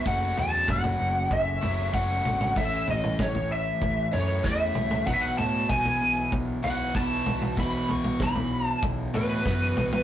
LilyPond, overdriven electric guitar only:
\new Staff \with { instrumentName = "Overdriven electric guitar" } { \time 4/4 \key b \dorian \tempo 4 = 96 <fis, cis fis a cis' fis'>2~ <fis, cis fis a cis' fis'>8 <fis, cis fis a cis' fis'>8 <fis, cis fis a cis' fis'>4 | <a, e a cis' e'>2~ <a, e a cis' e'>8 <a, e a cis' e'>8 <a, e a cis' e'>4 | <b, e b e' fis'>2~ <b, e b e' fis'>8 <b, e b e' fis'>8 <b, e b e' fis'>4 | <b, e b e' fis'>2~ <b, e b e' fis'>8 <b, e b e' fis'>8 <b, e b e' fis'>4 | }